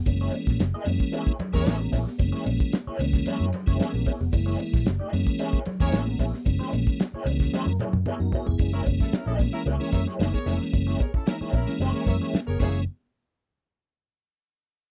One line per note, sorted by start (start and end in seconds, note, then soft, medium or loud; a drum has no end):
0.06 0.28 F#1 loud
0.06 0.61 E3 medium
0.06 0.61 G#3 medium
0.06 0.61 A#3 medium
0.06 0.62 C#4 medium
0.06 muted clean electric guitar stroke soft
0.06 kick loud
0.06 hi-hat pedal medium
0.06 ride medium
0.06 muted conga soft
0.21 0.33 A#3 medium
0.21 0.33 E4 medium
0.21 0.33 G#4 medium
0.21 0.34 C#5 medium
0.33 muted clean electric guitar stroke soft
0.33 ride medium
0.33 muted conga medium
0.47 0.57 A#1 medium
0.47 muted clean electric guitar stroke soft
0.47 kick loud
0.47 snare soft
0.59 0.71 F#1 medium
0.59 muted clean electric guitar stroke soft
0.59 snare loud
0.59 ride medium
0.59 high conga medium
0.74 0.86 A#3 medium
0.74 0.86 E4 medium
0.74 0.86 G#4 medium
0.74 0.88 D#5 medium
0.85 0.98 F#2 loud
0.85 1.32 E3 loud
0.85 1.32 G#3 medium
0.85 1.32 A#3 medium
0.85 1.32 C#4 loud
0.85 muted clean electric guitar stroke soft
0.85 ride medium
0.85 muted conga medium
1.00 muted clean electric guitar stroke soft
1.00 kick medium
1.12 1.33 A#3 medium
1.12 1.34 E4 medium
1.12 1.34 G#4 medium
1.12 1.34 C#5 medium
1.12 ride medium
1.12 muted conga medium
1.27 kick loud
1.39 muted clean electric guitar stroke soft
1.39 muted fingered electric bass stroke medium
1.39 ride medium
1.39 low conga loud
1.53 1.64 E2 loud
1.53 1.99 E3 medium
1.53 1.99 G#3 medium
1.53 1.99 A#3 medium
1.53 1.64 A#3 medium
1.53 1.99 C#4 medium
1.53 1.65 E4 medium
1.53 1.76 G#4 loud
1.53 1.65 G#4 medium
1.53 1.77 A#4 loud
1.53 1.66 C#5 medium
1.53 1.76 C#5 loud
1.53 kick loud
1.53 snare soft
1.65 1.87 A1 medium
1.65 1.86 A#3 medium
1.65 1.80 E4 medium
1.65 1.79 G#4 medium
1.65 1.79 C#5 loud
1.65 snare loud
1.65 ride medium
1.65 high conga medium
1.80 muted clean electric guitar stroke medium
1.80 high conga medium
1.91 2.04 A#1 loud
1.91 2.09 A#3 medium
1.91 2.06 E4 medium
1.91 2.05 G#4 medium
1.91 2.05 C#5 medium
1.91 kick medium
1.91 snare soft
1.91 open hi-hat medium
1.91 ride medium
2.06 muted clean electric guitar stroke medium
2.06 snare soft
2.06 high conga medium
2.18 2.31 F#1 loud
2.18 2.74 E3 medium
2.18 2.74 G#3 medium
2.18 2.75 A#3 medium
2.18 2.27 C4 medium
2.18 muted clean electric guitar stroke soft
2.18 kick loud
2.18 hi-hat pedal medium
2.18 ride medium
2.18 muted conga soft
2.26 2.78 C#4 medium
2.32 2.44 A#3 medium
2.32 2.45 E4 medium
2.32 2.46 G#4 medium
2.32 2.46 C#5 medium
2.32 snare soft
2.46 2.58 A#1 medium
2.46 muted clean electric guitar stroke soft
2.46 ride medium
2.46 muted conga medium
2.60 muted clean electric guitar stroke soft
2.60 kick loud
2.72 muted clean electric guitar stroke soft
2.72 snare loud
2.72 ride medium
2.72 high conga medium
2.87 2.99 A#3 medium
2.87 3.00 E4 medium
2.87 3.00 G#4 medium
2.87 3.01 C#5 medium
2.87 muted fingered electric bass stroke medium
2.99 3.21 C#2 medium
2.99 3.46 E3 loud
2.99 3.46 G#3 medium
2.99 3.46 A#3 medium
2.99 3.46 C#4 loud
2.99 muted clean electric guitar stroke medium
2.99 ride medium
2.99 muted conga medium
3.13 muted clean electric guitar stroke soft
3.13 kick loud
3.13 snare soft
3.26 3.47 A#3 medium
3.26 3.47 E4 medium
3.26 3.48 G#4 medium
3.26 3.48 C#5 loud
3.26 muted fingered electric bass stroke soft
3.26 ride medium
3.26 muted conga medium
3.26 low conga medium
3.40 3.50 F#2 loud
3.53 muted clean electric guitar stroke soft
3.53 ride medium
3.53 low conga medium
3.66 3.77 F#1 loud
3.66 4.12 E3 medium
3.66 4.12 G#3 medium
3.66 4.12 A#3 medium
3.66 3.78 A#3 medium
3.66 4.12 C#4 medium
3.66 3.79 E4 medium
3.66 3.79 G#4 medium
3.66 3.80 C#5 medium
3.66 kick loud
3.66 snare soft
3.79 4.00 A#3 medium
3.79 3.93 E4 medium
3.79 3.93 G#4 loud
3.79 3.92 C#5 medium
3.79 muted fingered electric bass stroke soft
3.79 snare loud
3.79 ride medium
3.79 high conga medium
3.94 4.04 A#1 loud
3.94 muted clean electric guitar stroke medium
3.94 high conga medium
4.05 4.22 A#3 medium
4.05 4.20 E4 medium
4.05 4.20 G#4 medium
4.05 4.19 C#5 medium
4.05 kick medium
4.05 open hi-hat medium
4.05 ride medium
4.20 4.31 F1 medium
4.20 muted clean electric guitar stroke soft
4.20 high conga medium
4.32 4.54 F#1 loud
4.32 4.88 E3 medium
4.32 4.88 G#3 medium
4.32 4.88 A#3 medium
4.32 4.88 E4 medium
4.32 muted clean electric guitar stroke soft
4.32 kick loud
4.32 hi-hat pedal medium
4.32 ride medium
4.32 muted conga soft
4.46 4.58 A#3 medium
4.46 4.58 E4 medium
4.46 4.58 G#4 medium
4.46 4.59 C#5 medium
4.59 muted clean electric guitar stroke soft
4.59 ride medium
4.59 muted conga medium
4.73 4.84 A#1 loud
4.73 muted clean electric guitar stroke soft
4.73 kick loud
4.73 snare soft
4.85 4.98 F#1 loud
4.85 muted clean electric guitar stroke soft
4.85 snare loud
4.85 ride medium
4.85 high conga medium
4.99 5.11 A#3 medium
4.99 5.11 E4 medium
4.99 5.12 G#4 medium
4.99 5.13 D#5 medium
5.12 5.24 F#2 loud
5.12 5.59 E3 medium
5.12 5.59 G#3 medium
5.12 5.59 A#3 medium
5.12 5.59 C#4 loud
5.12 muted clean electric guitar stroke soft
5.12 open hi-hat medium
5.12 ride medium
5.12 muted conga medium
5.27 muted clean electric guitar stroke medium
5.27 kick medium
5.39 5.60 A#3 medium
5.39 5.60 E4 medium
5.39 5.60 G#4 loud
5.39 5.61 C#5 loud
5.39 hi-hat pedal medium
5.39 ride medium
5.39 muted conga medium
5.53 kick loud
5.65 muted clean electric guitar stroke soft
5.65 muted fingered electric bass stroke soft
5.65 ride medium
5.65 low conga medium
5.80 5.90 E2 medium
5.80 6.25 E3 medium
5.80 6.26 G#3 medium
5.80 6.26 A#3 medium
5.80 5.91 A#3 medium
5.80 6.26 C#4 medium
5.80 5.91 E4 medium
5.80 5.98 G#4 loud
5.80 5.92 G#4 medium
5.80 5.97 A#4 loud
5.80 5.92 C#5 medium
5.80 5.97 C#5 loud
5.80 kick loud
5.80 snare soft
5.92 6.14 A1 medium
5.92 6.13 A#3 medium
5.92 6.06 E4 medium
5.92 6.06 G#4 loud
5.92 6.05 C#5 loud
5.92 snare loud
5.92 ride medium
5.92 high conga medium
6.06 muted clean electric guitar stroke medium
6.06 high conga medium
6.18 6.31 A#1 loud
6.18 6.35 A#3 medium
6.18 6.33 E4 medium
6.18 6.32 G#4 medium
6.18 6.32 C#5 medium
6.18 kick medium
6.18 snare soft
6.18 open hi-hat medium
6.18 ride medium
6.33 muted clean electric guitar stroke medium
6.33 snare soft
6.33 high conga medium
6.45 6.57 F#1 loud
6.45 7.01 E3 medium
6.45 7.01 G#3 medium
6.45 7.01 A#3 medium
6.45 7.01 C#4 medium
6.45 muted clean electric guitar stroke soft
6.45 kick loud
6.45 hi-hat pedal medium
6.45 ride medium
6.45 muted conga soft
6.59 6.71 A#3 medium
6.59 6.72 E4 medium
6.59 6.72 G#4 medium
6.59 6.72 C#5 medium
6.59 snare soft
6.72 6.84 A#1 medium
6.72 muted clean electric guitar stroke soft
6.72 ride medium
6.72 muted conga medium
6.87 muted clean electric guitar stroke soft
6.87 kick loud
7.00 muted clean electric guitar stroke soft
7.00 snare loud
7.00 ride medium
7.00 high conga medium
7.14 7.26 A#3 medium
7.14 7.27 E4 medium
7.14 7.27 G#4 medium
7.14 7.27 C#5 medium
7.14 muted fingered electric bass stroke medium
7.25 7.47 C#2 loud
7.25 7.72 E3 loud
7.25 7.73 G#3 medium
7.25 7.73 A#3 medium
7.25 7.73 C#4 loud
7.25 muted clean electric guitar stroke medium
7.25 open hi-hat medium
7.25 ride medium
7.25 muted conga medium
7.40 muted clean electric guitar stroke medium
7.40 kick loud
7.40 snare soft
7.53 7.74 A#3 loud
7.53 7.68 E4 loud
7.53 7.67 G#4 loud
7.53 7.67 C#5 loud
7.53 snare medium
7.53 muted conga medium
7.53 low conga medium
7.66 7.77 F#2 medium
7.66 muted clean electric guitar stroke medium
7.79 7.96 A#3 medium
7.79 7.94 E4 medium
7.79 7.93 G#4 medium
7.79 7.93 C#5 medium
7.79 high tom medium
7.79 low conga medium
7.93 8.03 F#2 loud
7.93 muted clean electric guitar stroke soft
7.93 high tom medium
8.06 8.27 A#3 medium
8.06 8.20 E4 loud
8.06 8.20 G#4 medium
8.06 8.19 C#5 loud
8.06 mid tom medium
8.06 high conga medium
8.20 8.30 F#2 medium
8.20 8.32 D#4 medium
8.20 8.32 F#4 medium
8.20 muted clean electric guitar stroke soft
8.20 high conga medium
8.32 8.50 A#3 medium
8.32 8.47 E4 medium
8.32 8.46 F#4 medium
8.32 8.47 G#4 medium
8.32 8.46 A#4 medium
8.32 8.46 C#5 medium
8.32 floor tom loud
8.46 8.57 F1 medium
8.46 8.72 E4 medium
8.46 8.72 G#4 medium
8.46 muted clean electric guitar stroke soft
8.46 floor tom medium
8.46 high conga medium
8.58 8.81 F#1 loud
8.58 9.14 E3 medium
8.58 9.14 G#3 medium
8.58 9.14 A#3 medium
8.58 9.15 C#4 medium
8.58 muted clean electric guitar stroke soft
8.58 kick loud
8.58 closed hi-hat medium
8.58 muted conga soft
8.73 8.85 A#3 medium
8.73 8.81 C#4 loud
8.73 8.81 E4 medium
8.73 8.85 E4 medium
8.73 8.86 G#4 medium
8.73 8.81 A#4 loud
8.73 8.86 C#5 medium
8.86 8.98 F#1 loud
8.86 muted clean electric guitar stroke soft
8.86 kick loud
8.86 closed hi-hat medium
8.86 muted conga medium
9.00 9.11 C#4 medium
9.00 9.10 E4 medium
9.00 9.11 A4 medium
9.00 muted clean electric guitar stroke soft
9.00 kick loud
9.00 snare soft
9.12 9.25 C#4 medium
9.12 9.24 E4 medium
9.12 9.24 A#4 loud
9.12 muted fingered electric bass stroke soft
9.12 muted clean electric guitar stroke soft
9.12 snare loud
9.12 closed hi-hat medium
9.12 high conga medium
9.26 9.48 A#1 medium
9.26 9.39 A#3 medium
9.26 9.34 C#4 medium
9.26 9.34 E4 medium
9.26 9.39 E4 medium
9.26 9.40 G#4 medium
9.26 9.34 A4 medium
9.26 9.41 D#5 medium
9.38 9.67 E3 medium
9.38 9.67 G#3 medium
9.38 9.67 A#3 medium
9.38 9.67 C#4 medium
9.38 muted clean electric guitar stroke soft
9.38 kick loud
9.38 open hi-hat soft
9.38 muted conga medium
9.53 9.61 C#4 medium
9.53 9.61 E4 medium
9.53 9.61 A#4 loud
9.53 muted clean electric guitar stroke soft
9.66 9.77 C#2 loud
9.66 9.87 A#3 medium
9.66 9.87 E4 medium
9.66 9.87 G#4 medium
9.66 9.87 C#5 medium
9.66 closed hi-hat loud
9.66 muted conga medium
9.80 10.08 E3 loud
9.80 10.08 G#3 loud
9.80 10.08 A#3 loud
9.80 10.08 C#4 loud
9.80 9.90 G#4 medium
9.80 9.90 A#4 medium
9.80 9.90 C#5 medium
9.92 10.04 F#2 loud
9.92 10.01 A#4 medium
9.92 10.01 C#5 medium
9.92 10.01 E5 medium
9.92 muted clean electric guitar stroke soft
9.92 kick medium
9.92 closed hi-hat medium
9.92 low conga medium
10.07 10.18 A#3 medium
10.07 10.19 E4 medium
10.07 10.19 G#4 medium
10.07 10.19 C#5 medium
10.07 snare soft
10.19 10.31 F#1 medium
10.19 10.38 E3 loud
10.19 10.39 G#3 medium
10.19 10.40 A#3 medium
10.19 10.39 A#3 loud
10.19 10.39 D#4 loud
10.19 10.34 E4 medium
10.19 10.33 G#4 medium
10.19 10.32 C#5 medium
10.19 snare loud
10.19 closed hi-hat medium
10.19 high conga medium
10.33 10.54 G#4 loud
10.33 10.54 A#4 medium
10.33 10.55 C#5 loud
10.33 muted clean electric guitar stroke soft
10.33 kick medium
10.33 high conga medium
10.45 10.57 F1 loud
10.45 11.02 E3 medium
10.45 11.02 G#3 medium
10.45 10.62 A#3 medium
10.45 11.02 A#3 medium
10.45 11.02 C#4 loud
10.45 10.60 E4 medium
10.45 10.59 G#4 medium
10.45 10.58 C#5 medium
10.45 snare soft
10.45 open hi-hat medium
10.59 muted clean electric guitar stroke soft
10.59 snare soft
10.72 10.95 F#1 loud
10.72 muted clean electric guitar stroke soft
10.72 kick loud
10.72 closed hi-hat medium
10.72 muted conga soft
10.87 10.99 A#3 medium
10.87 10.99 E4 medium
10.87 11.00 G#4 medium
10.87 11.00 C#5 medium
10.87 snare soft
10.99 11.11 G#4 medium
10.99 11.11 A#4 medium
10.99 11.11 C#5 medium
10.99 muted clean electric guitar stroke soft
10.99 kick loud
10.99 closed hi-hat medium
10.99 muted conga medium
11.14 11.24 C#4 medium
11.14 11.24 E4 medium
11.14 11.24 A4 loud
11.14 muted fingered electric bass stroke medium
11.14 muted clean electric guitar stroke soft
11.14 kick loud
11.26 11.54 E3 medium
11.26 11.54 G#3 medium
11.26 11.54 A#3 medium
11.26 11.35 C#4 medium
11.26 11.54 D#4 medium
11.26 11.35 E4 medium
11.26 11.35 A#4 loud
11.26 muted clean electric guitar stroke soft
11.26 snare loud
11.26 closed hi-hat medium
11.26 high conga medium
11.41 11.53 A#3 medium
11.41 11.53 E4 medium
11.41 11.54 G#4 medium
11.41 11.54 C#5 medium
11.41 muted fingered electric bass stroke medium
11.53 11.65 A#1 medium
11.53 11.75 C#4 loud
11.53 11.75 E4 loud
11.53 11.75 A#4 loud
11.53 muted clean electric guitar stroke soft
11.53 kick loud
11.53 closed hi-hat medium
11.53 muted conga medium
11.66 12.40 E3 medium
11.66 12.40 G#3 medium
11.66 12.40 A#3 medium
11.66 12.41 C#4 loud
11.66 muted clean electric guitar stroke medium
11.66 snare soft
11.79 11.91 F#1 medium
11.79 12.01 A#3 medium
11.79 12.01 E4 medium
11.79 12.01 G#4 medium
11.79 12.01 C#5 medium
11.79 closed hi-hat medium
11.79 muted conga soft
11.94 12.04 G#4 medium
11.94 12.04 A#4 medium
11.94 12.04 C#5 medium
12.06 12.18 F#2 loud
12.06 12.15 A#4 medium
12.06 12.15 C#5 medium
12.06 12.15 E5 medium
12.06 muted clean electric guitar stroke soft
12.06 kick medium
12.06 closed hi-hat medium
12.06 low conga medium
12.21 12.37 A#3 medium
12.21 12.37 E4 medium
12.21 12.37 G#4 medium
12.21 12.36 C#5 medium
12.21 snare soft
12.33 muted fingered electric bass stroke soft
12.33 snare loud
12.33 closed hi-hat medium
12.33 high conga medium
12.47 12.58 F#1 medium
12.47 12.57 G#4 medium
12.47 12.57 A#4 medium
12.47 12.57 C#5 medium
12.47 muted clean electric guitar stroke medium
12.47 high conga medium
12.59 12.85 F#1 medium
12.59 12.85 E3 medium
12.59 12.85 G#3 medium
12.59 12.85 A#3 medium
12.59 12.77 A#3 medium
12.59 12.79 A#3 medium
12.59 12.85 C#4 medium
12.59 12.77 E4 medium
12.59 12.79 G#4 medium
12.59 12.78 G#4 medium
12.59 12.79 C#5 loud
12.59 12.78 C#5 medium
12.59 kick medium
12.59 crash medium
12.59 muted conga medium